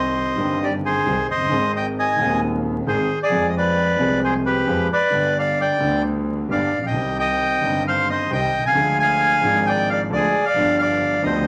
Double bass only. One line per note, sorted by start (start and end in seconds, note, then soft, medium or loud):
0.00 0.35 C2 medium
0.39 1.03 G1 medium
1.06 1.25 C2 medium
1.29 1.50 F#1 soft
1.51 2.16 G#1 medium
2.19 2.83 D#2 medium
2.87 3.06 G#1 medium
3.31 3.96 F2 medium
3.99 4.64 C2 medium
4.67 4.87 F2 medium
5.12 5.78 G1 medium
5.81 6.46 D2 medium
6.50 6.69 G1 medium
6.73 6.95 A#1 medium
6.96 7.60 C2 medium
7.63 8.28 G1 medium
8.31 8.50 C2 medium
8.54 8.76 C2 soft
8.76 9.41 D2 medium
9.43 10.08 G#1 medium
10.11 10.30 D2 medium
10.56 11.20 G1 medium
11.24 11.47 D2 loud